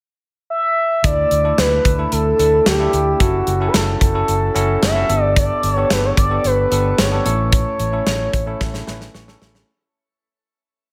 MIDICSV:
0, 0, Header, 1, 5, 480
1, 0, Start_track
1, 0, Key_signature, 2, "major"
1, 0, Tempo, 540541
1, 924, Time_signature, 4, 2, 24, 8
1, 9698, End_track
2, 0, Start_track
2, 0, Title_t, "Analog synth lead"
2, 0, Program_c, 0, 81
2, 445, Note_on_c, 0, 76, 107
2, 926, Note_on_c, 0, 74, 106
2, 939, Note_off_c, 0, 76, 0
2, 1407, Note_on_c, 0, 71, 100
2, 1420, Note_off_c, 0, 74, 0
2, 1885, Note_on_c, 0, 69, 99
2, 1899, Note_off_c, 0, 71, 0
2, 2365, Note_off_c, 0, 69, 0
2, 2370, Note_on_c, 0, 67, 94
2, 2848, Note_on_c, 0, 66, 95
2, 2862, Note_off_c, 0, 67, 0
2, 3261, Note_off_c, 0, 66, 0
2, 3267, Note_on_c, 0, 71, 68
2, 3332, Note_on_c, 0, 69, 101
2, 3345, Note_off_c, 0, 71, 0
2, 4285, Note_off_c, 0, 69, 0
2, 4291, Note_on_c, 0, 76, 93
2, 4734, Note_off_c, 0, 76, 0
2, 5254, Note_on_c, 0, 71, 88
2, 5369, Note_off_c, 0, 71, 0
2, 5376, Note_on_c, 0, 73, 84
2, 5428, Note_off_c, 0, 73, 0
2, 5491, Note_on_c, 0, 74, 93
2, 5735, Note_on_c, 0, 71, 97
2, 5749, Note_off_c, 0, 74, 0
2, 6215, Note_on_c, 0, 73, 91
2, 6229, Note_off_c, 0, 71, 0
2, 6690, Note_off_c, 0, 73, 0
2, 6696, Note_on_c, 0, 73, 99
2, 8095, Note_off_c, 0, 73, 0
2, 9698, End_track
3, 0, Start_track
3, 0, Title_t, "Tine electric piano"
3, 0, Program_c, 1, 4
3, 920, Note_on_c, 1, 57, 69
3, 924, Note_on_c, 1, 62, 61
3, 926, Note_on_c, 1, 64, 63
3, 929, Note_on_c, 1, 69, 74
3, 1098, Control_c, 1, 64, 127
3, 1158, Note_off_c, 1, 57, 0
3, 1160, Note_off_c, 1, 62, 0
3, 1161, Note_off_c, 1, 64, 0
3, 1163, Note_off_c, 1, 69, 0
3, 1278, Note_on_c, 1, 57, 65
3, 1280, Note_on_c, 1, 62, 59
3, 1284, Note_on_c, 1, 64, 57
3, 1288, Note_on_c, 1, 69, 71
3, 1596, Note_off_c, 1, 57, 0
3, 1597, Note_off_c, 1, 62, 0
3, 1599, Note_off_c, 1, 64, 0
3, 1600, Note_off_c, 1, 69, 0
3, 1758, Note_on_c, 1, 57, 61
3, 1763, Note_on_c, 1, 62, 56
3, 1764, Note_on_c, 1, 64, 61
3, 1768, Note_on_c, 1, 69, 67
3, 1997, Note_off_c, 1, 57, 0
3, 1999, Note_off_c, 1, 62, 0
3, 2000, Note_off_c, 1, 64, 0
3, 2002, Note_off_c, 1, 69, 0
3, 2119, Note_on_c, 1, 57, 64
3, 2122, Note_on_c, 1, 62, 62
3, 2125, Note_on_c, 1, 64, 58
3, 2129, Note_on_c, 1, 69, 73
3, 2357, Note_off_c, 1, 57, 0
3, 2359, Note_off_c, 1, 62, 0
3, 2361, Note_off_c, 1, 64, 0
3, 2363, Note_off_c, 1, 69, 0
3, 2479, Note_on_c, 1, 57, 68
3, 2484, Note_on_c, 1, 62, 64
3, 2488, Note_on_c, 1, 64, 62
3, 2490, Note_on_c, 1, 69, 71
3, 2718, Note_off_c, 1, 57, 0
3, 2720, Note_off_c, 1, 62, 0
3, 2722, Note_off_c, 1, 64, 0
3, 2723, Note_off_c, 1, 69, 0
3, 2839, Note_on_c, 1, 61, 68
3, 2842, Note_on_c, 1, 64, 62
3, 2845, Note_on_c, 1, 66, 62
3, 2849, Note_on_c, 1, 69, 78
3, 2858, Control_c, 1, 64, 0
3, 3005, Control_c, 1, 64, 127
3, 3077, Note_off_c, 1, 61, 0
3, 3079, Note_off_c, 1, 64, 0
3, 3081, Note_off_c, 1, 66, 0
3, 3082, Note_off_c, 1, 69, 0
3, 3201, Note_on_c, 1, 61, 66
3, 3204, Note_on_c, 1, 64, 59
3, 3208, Note_on_c, 1, 66, 62
3, 3212, Note_on_c, 1, 69, 74
3, 3517, Note_off_c, 1, 61, 0
3, 3518, Note_off_c, 1, 64, 0
3, 3520, Note_off_c, 1, 66, 0
3, 3523, Note_off_c, 1, 69, 0
3, 3678, Note_on_c, 1, 61, 65
3, 3681, Note_on_c, 1, 64, 58
3, 3685, Note_on_c, 1, 66, 55
3, 3689, Note_on_c, 1, 69, 75
3, 3917, Note_off_c, 1, 61, 0
3, 3919, Note_off_c, 1, 64, 0
3, 3921, Note_off_c, 1, 66, 0
3, 3922, Note_off_c, 1, 69, 0
3, 4036, Note_on_c, 1, 61, 82
3, 4040, Note_on_c, 1, 64, 74
3, 4043, Note_on_c, 1, 66, 74
3, 4048, Note_on_c, 1, 69, 93
3, 4276, Note_off_c, 1, 61, 0
3, 4278, Note_off_c, 1, 64, 0
3, 4279, Note_off_c, 1, 66, 0
3, 4282, Note_off_c, 1, 69, 0
3, 4397, Note_on_c, 1, 61, 66
3, 4400, Note_on_c, 1, 64, 63
3, 4404, Note_on_c, 1, 66, 63
3, 4407, Note_on_c, 1, 69, 74
3, 4516, Note_off_c, 1, 69, 0
3, 4516, Note_on_c, 1, 59, 75
3, 4519, Note_on_c, 1, 62, 67
3, 4521, Note_off_c, 1, 61, 0
3, 4522, Note_off_c, 1, 64, 0
3, 4522, Note_on_c, 1, 67, 64
3, 4524, Note_off_c, 1, 66, 0
3, 4527, Note_on_c, 1, 69, 75
3, 4538, Control_c, 1, 64, 0
3, 4690, Control_c, 1, 64, 127
3, 5000, Note_off_c, 1, 59, 0
3, 5002, Note_off_c, 1, 62, 0
3, 5003, Note_off_c, 1, 67, 0
3, 5006, Note_off_c, 1, 69, 0
3, 5117, Note_on_c, 1, 59, 67
3, 5122, Note_on_c, 1, 62, 63
3, 5123, Note_on_c, 1, 67, 59
3, 5130, Note_on_c, 1, 69, 76
3, 5435, Note_off_c, 1, 59, 0
3, 5437, Note_off_c, 1, 62, 0
3, 5438, Note_off_c, 1, 67, 0
3, 5441, Note_off_c, 1, 69, 0
3, 5595, Note_on_c, 1, 59, 65
3, 5599, Note_on_c, 1, 62, 59
3, 5603, Note_on_c, 1, 67, 61
3, 5606, Note_on_c, 1, 69, 70
3, 5835, Note_off_c, 1, 59, 0
3, 5837, Note_off_c, 1, 62, 0
3, 5839, Note_off_c, 1, 67, 0
3, 5841, Note_off_c, 1, 69, 0
3, 5956, Note_on_c, 1, 59, 68
3, 5961, Note_on_c, 1, 62, 60
3, 5964, Note_on_c, 1, 67, 61
3, 5968, Note_on_c, 1, 69, 75
3, 6196, Note_off_c, 1, 59, 0
3, 6198, Note_off_c, 1, 62, 0
3, 6200, Note_off_c, 1, 67, 0
3, 6202, Note_off_c, 1, 69, 0
3, 6318, Note_on_c, 1, 59, 69
3, 6320, Note_on_c, 1, 62, 61
3, 6323, Note_on_c, 1, 67, 63
3, 6328, Note_on_c, 1, 69, 74
3, 6437, Note_on_c, 1, 57, 70
3, 6438, Note_off_c, 1, 69, 0
3, 6440, Note_on_c, 1, 61, 68
3, 6441, Note_off_c, 1, 59, 0
3, 6442, Note_off_c, 1, 62, 0
3, 6444, Note_off_c, 1, 67, 0
3, 6444, Note_on_c, 1, 64, 66
3, 6448, Note_on_c, 1, 69, 78
3, 6457, Control_c, 1, 64, 0
3, 6589, Control_c, 1, 64, 127
3, 6921, Note_off_c, 1, 57, 0
3, 6922, Note_off_c, 1, 61, 0
3, 6924, Note_off_c, 1, 64, 0
3, 6927, Note_off_c, 1, 69, 0
3, 7033, Note_on_c, 1, 57, 63
3, 7039, Note_on_c, 1, 61, 60
3, 7041, Note_on_c, 1, 64, 64
3, 7044, Note_on_c, 1, 69, 73
3, 7353, Note_off_c, 1, 57, 0
3, 7356, Note_off_c, 1, 61, 0
3, 7357, Note_off_c, 1, 64, 0
3, 7359, Note_off_c, 1, 69, 0
3, 7514, Note_on_c, 1, 57, 78
3, 7518, Note_on_c, 1, 61, 69
3, 7523, Note_on_c, 1, 64, 72
3, 7525, Note_on_c, 1, 69, 84
3, 7755, Note_off_c, 1, 57, 0
3, 7757, Note_off_c, 1, 61, 0
3, 7759, Note_off_c, 1, 64, 0
3, 7760, Note_off_c, 1, 69, 0
3, 7875, Note_on_c, 1, 57, 74
3, 7878, Note_on_c, 1, 61, 75
3, 7881, Note_on_c, 1, 64, 75
3, 7884, Note_on_c, 1, 71, 84
3, 8115, Note_off_c, 1, 57, 0
3, 8117, Note_off_c, 1, 61, 0
3, 8118, Note_off_c, 1, 64, 0
3, 8120, Note_off_c, 1, 71, 0
3, 8120, Note_on_c, 1, 85, 66
3, 8236, Note_on_c, 1, 57, 78
3, 8241, Note_on_c, 1, 61, 73
3, 8244, Note_on_c, 1, 64, 73
3, 8246, Note_on_c, 1, 69, 87
3, 8345, Note_off_c, 1, 85, 0
3, 8364, Note_on_c, 1, 76, 64
3, 8476, Note_off_c, 1, 57, 0
3, 8478, Note_off_c, 1, 61, 0
3, 8480, Note_off_c, 1, 64, 0
3, 8481, Note_off_c, 1, 69, 0
3, 8587, Note_off_c, 1, 76, 0
3, 8617, Control_c, 1, 64, 0
3, 9698, End_track
4, 0, Start_track
4, 0, Title_t, "Fingered electric bass"
4, 0, Program_c, 2, 33
4, 925, Note_on_c, 2, 38, 99
4, 1097, Note_off_c, 2, 38, 0
4, 1165, Note_on_c, 2, 38, 84
4, 1338, Note_off_c, 2, 38, 0
4, 1405, Note_on_c, 2, 38, 95
4, 1577, Note_off_c, 2, 38, 0
4, 1644, Note_on_c, 2, 38, 85
4, 1817, Note_off_c, 2, 38, 0
4, 1886, Note_on_c, 2, 38, 98
4, 2058, Note_off_c, 2, 38, 0
4, 2124, Note_on_c, 2, 38, 88
4, 2297, Note_off_c, 2, 38, 0
4, 2366, Note_on_c, 2, 38, 86
4, 2538, Note_off_c, 2, 38, 0
4, 2605, Note_on_c, 2, 38, 93
4, 2778, Note_off_c, 2, 38, 0
4, 2843, Note_on_c, 2, 30, 93
4, 3016, Note_off_c, 2, 30, 0
4, 3084, Note_on_c, 2, 30, 92
4, 3257, Note_off_c, 2, 30, 0
4, 3325, Note_on_c, 2, 30, 92
4, 3498, Note_off_c, 2, 30, 0
4, 3563, Note_on_c, 2, 30, 84
4, 3736, Note_off_c, 2, 30, 0
4, 3804, Note_on_c, 2, 30, 96
4, 3977, Note_off_c, 2, 30, 0
4, 4043, Note_on_c, 2, 30, 87
4, 4217, Note_off_c, 2, 30, 0
4, 4283, Note_on_c, 2, 30, 95
4, 4456, Note_off_c, 2, 30, 0
4, 4523, Note_on_c, 2, 31, 92
4, 4869, Note_off_c, 2, 31, 0
4, 5003, Note_on_c, 2, 31, 83
4, 5176, Note_off_c, 2, 31, 0
4, 5242, Note_on_c, 2, 31, 93
4, 5416, Note_off_c, 2, 31, 0
4, 5482, Note_on_c, 2, 31, 93
4, 5656, Note_off_c, 2, 31, 0
4, 5723, Note_on_c, 2, 31, 92
4, 5896, Note_off_c, 2, 31, 0
4, 5963, Note_on_c, 2, 31, 92
4, 6136, Note_off_c, 2, 31, 0
4, 6204, Note_on_c, 2, 31, 92
4, 6377, Note_off_c, 2, 31, 0
4, 6444, Note_on_c, 2, 33, 90
4, 6790, Note_off_c, 2, 33, 0
4, 6923, Note_on_c, 2, 33, 86
4, 7096, Note_off_c, 2, 33, 0
4, 7164, Note_on_c, 2, 33, 100
4, 7337, Note_off_c, 2, 33, 0
4, 7402, Note_on_c, 2, 33, 84
4, 7576, Note_off_c, 2, 33, 0
4, 7645, Note_on_c, 2, 33, 92
4, 7818, Note_off_c, 2, 33, 0
4, 7882, Note_on_c, 2, 33, 84
4, 8056, Note_off_c, 2, 33, 0
4, 8120, Note_on_c, 2, 33, 89
4, 8294, Note_off_c, 2, 33, 0
4, 8360, Note_on_c, 2, 33, 95
4, 8534, Note_off_c, 2, 33, 0
4, 9698, End_track
5, 0, Start_track
5, 0, Title_t, "Drums"
5, 923, Note_on_c, 9, 42, 86
5, 924, Note_on_c, 9, 36, 97
5, 1012, Note_off_c, 9, 42, 0
5, 1013, Note_off_c, 9, 36, 0
5, 1164, Note_on_c, 9, 42, 64
5, 1253, Note_off_c, 9, 42, 0
5, 1404, Note_on_c, 9, 42, 77
5, 1405, Note_on_c, 9, 38, 86
5, 1493, Note_off_c, 9, 42, 0
5, 1494, Note_off_c, 9, 38, 0
5, 1644, Note_on_c, 9, 36, 87
5, 1646, Note_on_c, 9, 42, 67
5, 1732, Note_off_c, 9, 36, 0
5, 1735, Note_off_c, 9, 42, 0
5, 1882, Note_on_c, 9, 42, 80
5, 1971, Note_off_c, 9, 42, 0
5, 2126, Note_on_c, 9, 42, 78
5, 2215, Note_off_c, 9, 42, 0
5, 2364, Note_on_c, 9, 38, 99
5, 2365, Note_on_c, 9, 42, 83
5, 2453, Note_off_c, 9, 38, 0
5, 2454, Note_off_c, 9, 42, 0
5, 2604, Note_on_c, 9, 42, 61
5, 2693, Note_off_c, 9, 42, 0
5, 2843, Note_on_c, 9, 42, 84
5, 2844, Note_on_c, 9, 36, 98
5, 2932, Note_off_c, 9, 42, 0
5, 2933, Note_off_c, 9, 36, 0
5, 3081, Note_on_c, 9, 42, 61
5, 3170, Note_off_c, 9, 42, 0
5, 3321, Note_on_c, 9, 42, 78
5, 3322, Note_on_c, 9, 38, 93
5, 3410, Note_off_c, 9, 42, 0
5, 3411, Note_off_c, 9, 38, 0
5, 3562, Note_on_c, 9, 36, 87
5, 3565, Note_on_c, 9, 42, 67
5, 3651, Note_off_c, 9, 36, 0
5, 3654, Note_off_c, 9, 42, 0
5, 3803, Note_on_c, 9, 42, 77
5, 3892, Note_off_c, 9, 42, 0
5, 4046, Note_on_c, 9, 42, 79
5, 4135, Note_off_c, 9, 42, 0
5, 4286, Note_on_c, 9, 38, 101
5, 4286, Note_on_c, 9, 42, 84
5, 4374, Note_off_c, 9, 38, 0
5, 4375, Note_off_c, 9, 42, 0
5, 4524, Note_on_c, 9, 42, 64
5, 4613, Note_off_c, 9, 42, 0
5, 4764, Note_on_c, 9, 36, 103
5, 4764, Note_on_c, 9, 42, 89
5, 4852, Note_off_c, 9, 36, 0
5, 4853, Note_off_c, 9, 42, 0
5, 5002, Note_on_c, 9, 42, 63
5, 5091, Note_off_c, 9, 42, 0
5, 5243, Note_on_c, 9, 38, 87
5, 5243, Note_on_c, 9, 42, 81
5, 5331, Note_off_c, 9, 42, 0
5, 5332, Note_off_c, 9, 38, 0
5, 5482, Note_on_c, 9, 36, 90
5, 5484, Note_on_c, 9, 42, 65
5, 5571, Note_off_c, 9, 36, 0
5, 5573, Note_off_c, 9, 42, 0
5, 5722, Note_on_c, 9, 42, 74
5, 5810, Note_off_c, 9, 42, 0
5, 5964, Note_on_c, 9, 42, 81
5, 6053, Note_off_c, 9, 42, 0
5, 6202, Note_on_c, 9, 38, 101
5, 6203, Note_on_c, 9, 42, 86
5, 6291, Note_off_c, 9, 38, 0
5, 6292, Note_off_c, 9, 42, 0
5, 6444, Note_on_c, 9, 42, 62
5, 6532, Note_off_c, 9, 42, 0
5, 6681, Note_on_c, 9, 42, 89
5, 6682, Note_on_c, 9, 36, 107
5, 6770, Note_off_c, 9, 42, 0
5, 6771, Note_off_c, 9, 36, 0
5, 6922, Note_on_c, 9, 42, 64
5, 7010, Note_off_c, 9, 42, 0
5, 7162, Note_on_c, 9, 42, 80
5, 7163, Note_on_c, 9, 38, 89
5, 7251, Note_off_c, 9, 38, 0
5, 7251, Note_off_c, 9, 42, 0
5, 7401, Note_on_c, 9, 36, 82
5, 7403, Note_on_c, 9, 42, 66
5, 7490, Note_off_c, 9, 36, 0
5, 7491, Note_off_c, 9, 42, 0
5, 7641, Note_on_c, 9, 38, 48
5, 7644, Note_on_c, 9, 36, 84
5, 7730, Note_off_c, 9, 38, 0
5, 7733, Note_off_c, 9, 36, 0
5, 7761, Note_on_c, 9, 38, 49
5, 7850, Note_off_c, 9, 38, 0
5, 7881, Note_on_c, 9, 38, 61
5, 7969, Note_off_c, 9, 38, 0
5, 8001, Note_on_c, 9, 38, 56
5, 8089, Note_off_c, 9, 38, 0
5, 8121, Note_on_c, 9, 38, 72
5, 8209, Note_off_c, 9, 38, 0
5, 8242, Note_on_c, 9, 38, 67
5, 8331, Note_off_c, 9, 38, 0
5, 8362, Note_on_c, 9, 38, 85
5, 8451, Note_off_c, 9, 38, 0
5, 8482, Note_on_c, 9, 38, 84
5, 8571, Note_off_c, 9, 38, 0
5, 9698, End_track
0, 0, End_of_file